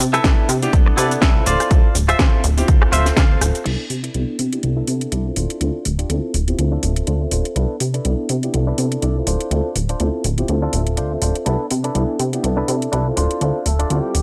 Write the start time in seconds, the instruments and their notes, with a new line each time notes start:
0.00 analog synth bass C3, open hi-hat, shaker
0.13 clean electric guitar E4 A4 B4 E5, cross-stick, closed hi-hat, shaker
0.24 analog synth bass C2, grand piano B3 D4 E4 A4, kick, snare, closed hi-hat, shaker
0.49 analog synth bass C3, open hi-hat, shaker
0.62 grand piano B3 D4 E4 G4, closed hi-hat, shaker
0.73 analog synth bass C2, kick, closed hi-hat, shaker
0.86 muted clean electric guitar stroke
0.97 analog synth bass C3, grand piano B3 D4 E4 A4, clean electric guitar E4 A4 B4 D5, open hi-hat, shaker
1.11 closed hi-hat, shaker
1.22 analog synth bass C2, clean electric guitar E4 A4 B4 E5, kick, snare, closed hi-hat, shaker
1.35 grand piano C4 E4 F4 A4
1.46 analog synth bass D1, clean electric guitar F4 C5 D5, open hi-hat, shaker
1.60 cross-stick, closed hi-hat, shaker
1.70 analog synth bass D2, grand piano C4 E4 F4 A4, kick, closed hi-hat, shaker
1.95 analog synth bass D1, open hi-hat, shaker
2.08 clean electric guitar F4 C5 E5, cross-stick, closed hi-hat, shaker
2.19 analog synth bass D2, grand piano C4 E4 F4 A4, kick, snare, closed hi-hat, shaker
2.44 analog synth bass D1, open hi-hat, shaker
2.57 grand piano C4 E4 F4 G4, closed hi-hat, shaker
2.68 analog synth bass D2, grand piano E4 F4, kick, closed hi-hat, shaker
2.82 analog synth bass D1, muted clean electric guitar stroke, cross-stick
2.92 analog synth bass D1, grand piano C4 F4 A4 E5, clean electric guitar F4 C5 E5, open hi-hat, shaker
3.06 snare, closed hi-hat, shaker
3.17 analog synth bass D2, clean electric guitar F4 C5 F5, kick, snare, closed hi-hat, shaker
3.30 grand piano C4 F4 A4
3.41 analog synth bass D1, cross-stick, open hi-hat, shaker
3.55 closed hi-hat, shaker
3.65 analog synth bass C2, grand piano B3 D4 E4, clean electric guitar E4 A4 B4 D5, closed hi-hat, crash
3.90 analog synth bass C3, open hi-hat
4.03 clean electric guitar E4 A4 B4 D5, closed hi-hat
4.14 analog synth bass C2, grand piano B3 D4 E4 A4, closed hi-hat
4.39 analog synth bass C3, muted clean electric guitar stroke, open hi-hat
4.52 grand piano B3 D4 E4 G4, closed hi-hat
4.62 analog synth bass C2, grand piano B3 D4 E4 A4, muted clean electric guitar stroke, closed hi-hat
4.77 clean electric guitar E4 A4 B4 E5
4.87 analog synth bass C3, grand piano B3 D4 E4 A4, open hi-hat
5.01 closed hi-hat
5.12 analog synth bass C2, clean electric guitar E4 A4 B4 D5, closed hi-hat
5.25 grand piano C4 E4 F4 A4
5.36 analog synth bass D1, clean electric guitar D4 F4 C5, open hi-hat
5.50 closed hi-hat
5.61 analog synth bass D2, grand piano C4 E4 F4 A4, closed hi-hat
5.85 analog synth bass D1, open hi-hat
5.99 clean electric guitar D4 F4 G4, closed hi-hat
6.10 analog synth bass D2, grand piano C4 E4 F4 A4, closed hi-hat
6.34 analog synth bass D1, muted clean electric guitar stroke, open hi-hat
6.47 grand piano C4 E4 F4 G4, closed hi-hat
6.58 analog synth bass D2, grand piano C4 E4 F4 A4, muted clean electric guitar stroke, closed hi-hat
6.72 clean electric guitar D4 F4 A4
6.83 analog synth bass D1, grand piano C4 F4 A4 E5, open hi-hat
6.96 closed hi-hat
7.07 analog synth bass D2, clean electric guitar D4 F4 C5, closed hi-hat
7.21 grand piano C4 F4 A4 E5
7.31 analog synth bass D1, clean electric guitar D4 F4 C5, open hi-hat
7.45 closed hi-hat
7.56 analog synth bass C2, grand piano B3 D4 E4 A4, clean electric guitar D4 E4 A4 B4, closed hi-hat
7.80 analog synth bass C3, open hi-hat
7.94 clean electric guitar D4 E4 A4 B4, closed hi-hat
8.05 analog synth bass C2, grand piano B3 D4 E4 A4, closed hi-hat
8.29 analog synth bass C3, muted clean electric guitar stroke, open hi-hat
8.43 grand piano B3 D4 E4 G4, closed hi-hat
8.53 analog synth bass C2, grand piano B3 D4 E4 A4, muted clean electric guitar stroke, closed hi-hat
8.67 clean electric guitar D4 E4 A4 B4
8.78 analog synth bass C3, grand piano B3 D4 E4 A4, open hi-hat
8.92 closed hi-hat
9.02 analog synth bass C2, clean electric guitar D4 E4 A4 D5, closed hi-hat
9.16 grand piano C4 E4 F4 A4
9.27 analog synth bass D1, clean electric guitar D4 F4 C5, open hi-hat
9.40 closed hi-hat
9.51 analog synth bass D2, grand piano C4 E4 F4 A4, closed hi-hat
9.76 analog synth bass D1, open hi-hat
9.89 clean electric guitar D4 F4 C5, closed hi-hat
10.00 analog synth bass D2, grand piano C4 E4 F4 A4, closed hi-hat
10.24 analog synth bass D1, muted clean electric guitar stroke, open hi-hat
10.38 grand piano C4 E4 F4 G4, closed hi-hat
10.48 analog synth bass D2, grand piano C4 E4 F4 A4, muted clean electric guitar stroke, closed hi-hat
10.62 clean electric guitar D4 F4 A4
10.73 analog synth bass D1, grand piano C4 F4 A4 E5, open hi-hat
10.87 closed hi-hat
10.97 analog synth bass D2, clean electric guitar D4 F4 C5, closed hi-hat
11.11 grand piano C4 F4 A4 E5
11.22 analog synth bass D1, clean electric guitar D4 F4 C5, open hi-hat
11.35 closed hi-hat
11.46 analog synth bass C2, grand piano B3 D4 E4 A4, clean electric guitar D4 E4 A4 B4, closed hi-hat
11.71 analog synth bass C3, open hi-hat
11.84 clean electric guitar D4 E4 A4 B4, closed hi-hat
11.95 analog synth bass C2, horn section E3 E4, grand piano B3 D4 E4 A4, closed hi-hat
12.19 analog synth bass C3, muted clean electric guitar stroke, open hi-hat
12.33 grand piano B3 D4 E4 G4, closed hi-hat
12.43 analog synth bass C2, grand piano B3 D4 E4 A4, muted clean electric guitar stroke, closed hi-hat
12.57 clean electric guitar D4 E4 A4 B4
12.68 analog synth bass C3, grand piano D4 E4 A4, open hi-hat
12.82 closed hi-hat
12.92 analog synth bass C2, clean electric guitar D4 E4 A4 B4, closed hi-hat
13.06 grand piano C4 E4 F4 A4
13.17 analog synth bass D1, clean electric guitar D4 F4 C5, open hi-hat
13.31 closed hi-hat
13.41 analog synth bass D2, grand piano C4 E4 F4 A4, closed hi-hat
13.66 analog synth bass D1, horn section A3 A4, open hi-hat
13.79 clean electric guitar D4 F4 D5, closed hi-hat
13.90 analog synth bass D2, horn section G3 G4, grand piano C4 E4 F4 A4, closed hi-hat
14.14 analog synth bass D1, muted clean electric guitar stroke, open hi-hat